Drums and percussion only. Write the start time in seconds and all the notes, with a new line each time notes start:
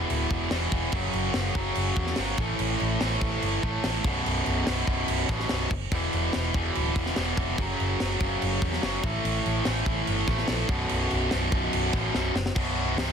0.10 crash
0.31 kick, crash
0.51 snare, crash
0.72 kick, crash
0.92 kick, crash
1.13 crash
1.34 snare, crash
1.55 kick, crash
1.75 crash
1.96 kick, crash
2.07 snare
2.16 snare, crash
2.37 kick, crash
2.59 crash
2.80 crash
3.01 snare, crash
3.21 kick, crash
3.42 crash
3.63 kick
3.84 snare, crash
4.04 kick, crash
4.26 crash
4.46 crash
4.67 snare, crash
4.87 kick, crash
5.08 crash
5.29 kick, snare
5.40 snare
5.49 snare, crash
5.71 kick, crash
5.91 kick, crash
6.13 crash
6.33 snare, crash
6.54 kick, crash
6.75 crash
6.96 kick, crash
7.06 snare
7.16 snare, crash
7.37 kick, crash
7.58 kick, crash
7.80 crash
8.00 snare, crash
8.21 kick, crash
8.42 crash
8.62 kick, crash
8.73 snare
8.83 snare, crash
9.04 kick, crash
9.25 crash
9.46 crash
9.65 snare, crash
9.86 kick, crash
10.07 crash
10.27 kick, snare, crash
10.38 snare
10.48 snare, crash
10.69 kick, crash
10.89 crash
11.11 crash
11.31 snare, crash
11.52 kick, crash
11.73 crash
11.93 kick, snare, crash
12.14 snare
12.36 snare
12.46 snare
12.56 kick, crash
12.98 snare, open hi-hat